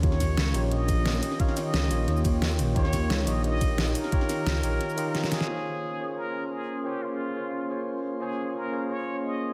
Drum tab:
RD |--x---x---x---x-|--x---x---x---x-|--x---x---x---x-|--x---x---x---x-|
HH |x-x-x-x-x-x-x-x-|x-x-x-x-x-x-x-x-|x-x-x-x-x-x-x-x-|x-x-x-x-x-x-x-x-|
SH |--x-x-x---x--xx-|--x-x-x--xx--xx-|--x-x-x---x--xx-|--x-x-x--xx--xx-|
SD |-oo-o-------o--o|-oo-o---o---o---|-oo-o-------o--o|-oo-o---o---oooo|
BD |o-o-------o-----|o---------o-----|o-o-------o-----|o---------------|

RD |----------------|----------------|----------------|
HH |----------------|----------------|----------------|
SH |----------------|----------------|----------------|
SD |----------------|----------------|----------------|
BD |----------------|----------------|----------------|